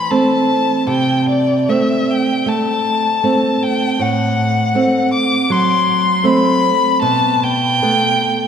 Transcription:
Already playing: nylon-string guitar E3, violin B5
0.11 nylon-string guitar A3 C4, violin A5
0.87 nylon-string guitar C3, violin G5
1.29 violin D5
1.69 nylon-string guitar A3 C4, violin E5
2.11 violin G5
2.46 nylon-string guitar A3, violin A5
3.24 nylon-string guitar A3 C4
3.63 violin G5
3.99 nylon-string guitar A2, violin F#5
4.75 nylon-string guitar A3 C4
5.13 violin D6
5.50 nylon-string guitar F#3, violin C6
6.24 nylon-string guitar A3 C4, violin B5
7.01 nylon-string guitar B2, violin A5
7.44 violin G5
7.82 nylon-string guitar A3 B3

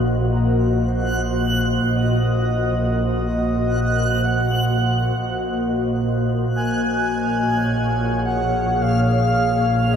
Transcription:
Already playing: double bass section A#1, ambient pad A#2 A#3 F#4 C5 D#5, synth texture F#6
0.32 soft synth lead A#4
0.88 soft synth lead C5
1.96 soft synth lead D#5
3.12 soft synth lead D#5
4.25 soft synth lead F#5
6.50 double bass section A#1, ambient pad A#2, synth texture F6
6.56 soft synth lead G#5
6.84 ambient pad C#5
7.35 ambient pad G#4
8.25 soft synth lead F#5
8.82 soft synth lead F5, ambient pad F5

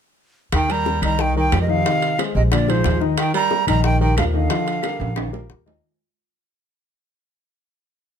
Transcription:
0.52 upright bass D#2, baritone saxophone D#3, flute G5, high bongo, high timbale, claves
0.69 grand piano G3 G4 A#4, baritone saxophone G3, flute A#5, high timbale
0.86 high bongo, low timbale
1.02 upright bass C2, grand piano D#3 D#4 D#5, baritone saxophone G3, flute A#5, high timbale, claves
1.19 baritone saxophone D#3, flute G5, high bongo
1.35 baritone saxophone D#3, grand piano G3 G4 A#4, flute G5
1.52 upright bass F2, high bongo, low bongo, high timbale, low timbale, claves
1.61 baritone saxophone C3, flute D#5
1.68 baritone saxophone C3, grand piano D#3 D#4 D#5, flute F5
1.85 grand piano D#3 D#4 D#5, high bongo, high timbale
2.02 high bongo, high timbale
2.19 grand piano G#3 G#4 C5, high bongo, high timbale, low timbale, claves
2.35 upright bass A#1, baritone saxophone C3, flute D#5
2.51 baritone saxophone A#2, grand piano D3 D4 D5, flute D5, high bongo, high timbale, claves
2.68 baritone saxophone G#2, grand piano F3 F4 G#4, flute C5, high bongo, high timbale
2.84 upright bass D#2, high bongo, low bongo, high timbale, low timbale
3.00 grand piano D#3 D#4 D#5, high bongo
3.18 baritone saxophone D#3, flute G5, high bongo, high timbale, claves
3.33 grand piano G3 G4 A#4, baritone saxophone G3, flute A#5, high timbale
3.51 high bongo, low timbale
3.67 upright bass A#1, grand piano D#3 D#4 D#5, baritone saxophone G3, flute A#5, high timbale, claves
3.84 baritone saxophone D#3, flute G5, high bongo
4.00 baritone saxophone D#3, grand piano G3 G4 A#4, flute G5
4.16 upright bass D#2, baritone saxophone D3, flute F5, high bongo, low bongo, high timbale, low timbale, claves
4.34 baritone saxophone D3, grand piano D#3 D#4 D#5, flute F5
4.49 grand piano F3 F4 D#5, high bongo, high timbale
4.67 high bongo, high timbale
4.83 grand piano G3 G4 A#4, high bongo, high timbale, low timbale, claves
5.00 upright bass A#1, high timbale
5.16 grand piano D#3 D#4 D#5, high bongo, high timbale, claves
5.32 grand piano G3 G4 A#4, high bongo, low timbale
5.50 upright bass D#2, high bongo, low bongo
5.66 grand piano D#3 D#4 D#5, high bongo, low timbale

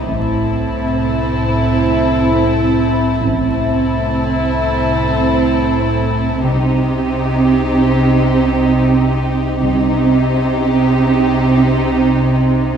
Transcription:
0.05 double bass section A1, synth drone C2, cello section A2, viola section C4, violin section E4 A4
3.24 double bass section A1, synth drone C2, cello section A2, viola section C4, violin section E4 A4
6.43 synth drone C2, double bass section C2, cello section C3, viola section C4, violin section D#4 G4
9.62 double bass section C2, synth drone C2, cello section C3, viola section C4, violin section D#4 G4

